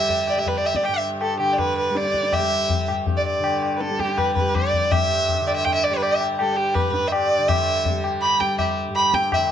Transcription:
Already playing: G2 D3 G3 E5
0.09 tabla tin, tabla ge
0.27 D5, tabla na
0.38 G3 E5
0.46 B4, tabla tin, tabla ge
0.57 D5
0.65 E5, tabla na
0.75 D5, tabla ke
0.84 G5, tabla na
0.88 G2
0.94 E5
1.21 A4, tabla na
1.39 D3 G4, tabla na
1.53 D5
1.58 B4, tabla tin, tabla ge
1.78 B4
1.90 G3
1.95 D5, tabla te
2.05 tabla te
2.14 tabla ke
2.23 tabla te
2.33 E5, tabla na, tabla ge
2.39 G3
2.69 tabla tin, tabla ge
2.88 G2, tabla na
3.07 tabla tin, tabla ge
3.17 D5
3.27 D5
3.40 D3
3.44 tabla na
3.63 tabla na
3.76 B4
3.81 A4, tabla te
3.90 G3, tabla te
3.99 G4, tabla ke
4.09 tabla te
4.18 B4, tabla na, tabla ge
4.36 B4, tabla ge
4.40 G3
4.55 D5, tabla na, tabla ge
4.73 tabla ge
4.91 G2 E5, tabla na, tabla ge
5.29 tabla tin, tabla ge
5.41 D3
5.47 D5, tabla na
5.56 E5
5.65 G5, tabla tin, tabla ge
5.74 E5
5.83 D5, tabla na
5.90 G3 B4
6.02 D5, tabla na
6.12 E5
6.21 tabla na
6.39 G3 A4, tabla na
6.57 G4
6.74 B4, tabla na, tabla ge
6.90 G2 B4, tabla te
7.08 E5
7.12 D5, tabla na
7.39 D3
7.48 E5, tabla na, tabla ge
7.85 G3, tabla tin, tabla ge
8.04 tabla na
8.22 B5, tabla na
8.39 G3 G5, tabla ke
8.58 E5, tabla na, tabla ge
8.88 G2
8.96 B5, tabla na
9.14 G5, tabla ke
9.32 E5, tabla na, tabla ge
9.38 D3

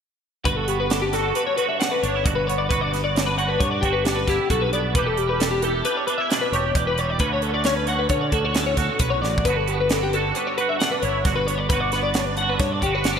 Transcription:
0.45 G1 G2 F#4 B4, kick, closed hi-hat
0.56 A4
0.68 B3 G4, closed hi-hat
0.80 B4
0.90 D4 A4, snare, closed hi-hat
1.02 G4
1.13 D3 F#4 A4, snare, closed hi-hat
1.35 D4 B4, closed hi-hat
1.47 C#5
1.57 F#4 B4, closed hi-hat
1.69 E5
1.80 D3 D4 F#5, snare, closed hi-hat
1.91 B4
2.03 G1 D4 C#5, closed hi-hat
2.15 E4
2.24 G1 G2 F#4 D5, kick, closed hi-hat
2.35 B4
2.47 B3 C#5, closed hi-hat
2.58 D5
2.69 G1 G2 F#4 B4, kick, closed hi-hat
2.81 D5
2.92 B3 B4, snare, closed hi-hat
3.04 D5
3.15 D4 C#5, snare, closed hi-hat
3.26 B4
3.38 D3 F#4 F#5, closed hi-hat
3.48 B4
3.60 G2 D4 C#5, kick, closed hi-hat
3.71 D5
3.81 G1 F#4 G4, kick, closed hi-hat
3.93 B4
4.05 D3 D4 G4, snare, closed hi-hat
4.16 B4
4.27 G1 E4 G4, kick, snare, closed hi-hat
4.50 B1 G2 F#4 A4, kick, closed hi-hat
4.62 B4
4.73 B3 D5, closed hi-hat
4.95 E1 E2 E3 G3 D4 G4 B4, kick, closed hi-hat
5.06 A4
5.17 G3 G4, closed hi-hat
5.29 B4
5.40 D4 A4, snare, closed hi-hat
5.51 G4
5.62 E3 G4 A4, closed hi-hat
5.85 D4 B4, closed hi-hat
5.97 C#5
6.07 D4 B4, closed hi-hat
6.18 E4 E5
6.30 B2 D4 F#5, snare, closed hi-hat
6.41 B4
6.52 E1 G4 C#5, closed hi-hat
6.75 E1 E2 G4 D5, kick, closed hi-hat
6.87 B4
6.98 G3 C#5, closed hi-hat
7.10 D5
7.19 D2 D3 A3 C#4 F#4 B4, kick, closed hi-hat
7.33 C#5
7.42 A3 A4, closed hi-hat
7.54 D5
7.64 C#4 C#5, snare, closed hi-hat
7.77 B4
7.87 D3 F#4 F#5, closed hi-hat
7.99 B4
8.09 D3 C#4 C#5, kick, closed hi-hat
8.21 D5
8.32 D2 F#4 A4, kick, closed hi-hat
8.45 C#5
8.54 A2 C#4 A4, snare, closed hi-hat
8.67 C#5
8.77 D2 F#4 A4, kick, snare, closed hi-hat
8.99 B1 E2 B4, kick, closed hi-hat
9.10 C#5
9.22 A1 F#2 D5, snare
9.38 kick
9.45 G1 G2 D3 B3 D4 B4, kick, closed hi-hat
9.49 F#4
9.57 A4
9.68 B3 G4, closed hi-hat
9.80 B4
9.89 D4 A4, snare, closed hi-hat
10.03 G4
10.13 D3 F#4 A4, closed hi-hat
10.35 D4 B4, closed hi-hat
10.47 C#5
10.58 F#4 B4, closed hi-hat
10.69 E5
10.79 D3 D4 F#5, snare, closed hi-hat
10.91 B4
11.02 G1 E4 C#5, closed hi-hat
11.24 G1 G2 F#4 D5, kick, snare, closed hi-hat
11.36 B4
11.47 B3 C#5, closed hi-hat
11.58 D5
11.69 G1 G2 F#4 B4, kick, closed hi-hat
11.80 D5
11.92 B3 B4, snare, closed hi-hat
12.03 D5
12.14 C#5, snare, closed hi-hat
12.18 D4
12.26 B4
12.37 D3 F#5, closed hi-hat
12.41 F#4
12.49 B4
12.59 G2 D4 C#5, kick, snare, closed hi-hat
12.72 D5
12.82 G1 F#4 G4, kick, closed hi-hat
12.95 B4
13.04 D3 G4, snare, closed hi-hat
13.08 D4

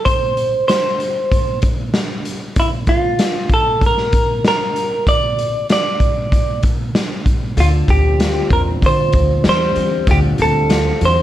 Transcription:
0.05 C5, kick, closed hi-hat
0.37 closed hi-hat
0.68 C5, snare, closed hi-hat
1.00 closed hi-hat
1.32 kick, closed hi-hat
1.62 kick, closed hi-hat
1.94 snare, closed hi-hat
2.25 closed hi-hat
2.56 E4, kick, closed hi-hat
2.87 F4, kick, closed hi-hat
3.19 snare, closed hi-hat
3.49 kick, closed hi-hat
3.54 A4
3.81 kick, closed hi-hat
3.86 A#4
3.97 snare
4.12 kick, closed hi-hat
4.45 A#4, snare, closed hi-hat
4.76 closed hi-hat
5.07 D5, kick, closed hi-hat
5.38 closed hi-hat
5.69 D5, snare, closed hi-hat
6.00 kick, closed hi-hat
6.32 kick, closed hi-hat
6.63 kick, closed hi-hat
6.95 snare, closed hi-hat
7.26 kick, closed hi-hat
7.57 D2 D3 F4, closed hi-hat
7.88 D2 C4 G4, kick, closed hi-hat
8.20 F4, snare, closed hi-hat
8.50 E2 C4 A#4, kick, closed hi-hat
8.82 D3 F4 C5, kick, closed hi-hat
9.12 D2 C4, kick, closed hi-hat
9.44 E2 G3, snare, closed hi-hat
9.49 C5
9.75 E2 C4, closed hi-hat
10.07 D2 D3 F4 G4, kick, closed hi-hat
10.38 D2 C4 A4, closed hi-hat
10.69 F4, snare, closed hi-hat
11.01 E2 C4, closed hi-hat
11.05 C5

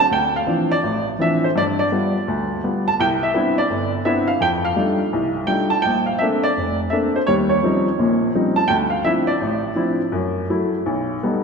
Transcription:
0.11 D2 G5
0.36 F5
0.47 E3 F3 C4 D4
0.72 D5
0.83 A1
1.19 E3 F3 C4 D4 E5
1.44 C5
1.56 G2 D5
1.79 D5
1.92 G3 B3 F4
2.28 D2
2.64 G3 B3 F4
2.88 A5
3.00 C2 G5
3.23 E5
3.34 B3 C4 D4 E4
3.58 D5
3.70 G1
4.05 B3 C4 D4 E4 E5
4.27 F5
4.41 F2 G5
4.65 F5
4.76 G3 A3 D4 D#4 F4
5.13 C2
5.47 G3 A3 D4 D#4 F4 G5
5.70 A5
5.82 A#1 G5
6.06 F5
6.19 A3 A#3 C4 D4 E5
6.44 D5
6.57 F1
6.90 A3 A#3 C4 D4 E5
7.16 C5
7.27 D#2 G3 C#5
7.49 C#5
7.63 F3 G3 C4 C#4 D#4
7.99 A#1 A#2
8.35 F3 G3 C4 C#4 D#4
8.56 A5
8.68 D2 G5
8.90 F5
9.04 F3 C4 D4 E4 E5
9.27 D5
9.41 A1
9.75 F3 C4 D4 E4
10.12 F#2
10.50 F#3 A3 E4
10.86 B1
11.23 G3 A3 B3 D#4

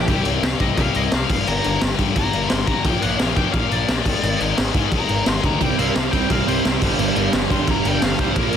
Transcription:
Already playing: G4 G5
0.08 C2 C3 G3 C4, kick, crash
0.25 C2 C3 G3 C4, crash
0.42 C2 C3 G3 C4 F5, snare, crash
0.60 C2 C3 G3 C4 D#5, kick, crash
0.77 C2 C3 G3 C4 F5, kick, crash
0.95 C2 C3 G3 C4 D#5, crash
1.12 C2 C3 G3 C4 F5, snare, crash
1.30 G1 G2 D3 G3 F5, kick, crash
1.47 G1 G2 D3 G3 A#5, crash
1.64 G1 G2 D3 G3, crash
1.81 G1 G2 D3 G3, snare, crash
1.98 G2 D3 G3, kick, crash
2.16 G1 G2 D3 G3 A#5, kick, crash
2.33 G1 G2 D3 G3, crash
2.49 G1 G2 D3 G3 C6, snare, crash
2.67 G#1 G2 D3 G3 A#5, kick, crash
2.85 A#1 A#2 F3 A#3 G5, kick, crash
3.02 A#1 A#2 F3 A#3 F#5, crash
3.19 A#1 A#2 F3 A#3 F5, snare, crash
3.36 A#1 A#2 F3 A#3 G5, kick, crash
3.52 A#1 A#2 F3 A#3 F5, kick, crash
3.70 A#1 A#2 F3 A#3 D5, crash
3.88 A#1 A#2 F3 A#3, snare, crash
4.04 G#1 G#2 D#3 G#3, kick, crash
4.23 G#1 G#2 D#3 G#3, crash
4.40 G#1 G#2 D#3 G#3, crash
4.58 G#1 G#2 D#3 G#3, snare, crash
4.74 G#2 D#3 G#3, kick, crash
4.92 G#1 G#2 D#3 G#3 A#5, kick, crash
5.09 G#1 G#2 D#3 G#3, crash
5.25 G#1 G#2 D#3 G#3 C6, snare, crash
5.42 D2 G#2 D#3 G#3 A#5, kick, crash
5.60 C2 C3 G3 C4 G5, kick, crash
5.78 C2 C3 G3 C4 F5, crash
5.95 C2 C3 G3 C4 F5, snare, crash
6.11 C2 C3 G3 C4 G5, kick, crash
6.30 C2 C3 G3 C4 F5, kick, crash
6.48 C2 C3 G3 C4 C5, crash
6.65 C2 C3 G3 C4, snare, crash
6.82 G1 G2 D3 G3, kick, crash
6.98 G1 G2 D3 G3, crash
7.16 G1 G2 D3 G3, crash
7.33 G1 G2 D3 G3, snare, crash
7.50 G2 D3 G3 C6, kick, crash
7.68 G1 G2 D3 G3 A#5, kick, crash
7.85 G1 G2 D3 G3 G5, crash
8.02 G1 G2 D3 G3 F5, snare, crash
8.19 C2 G2 D3 G3 C5, kick, crash
8.36 A#1 A#2 F3 A#3 A#4, kick, crash
8.53 F3 A#3, crash

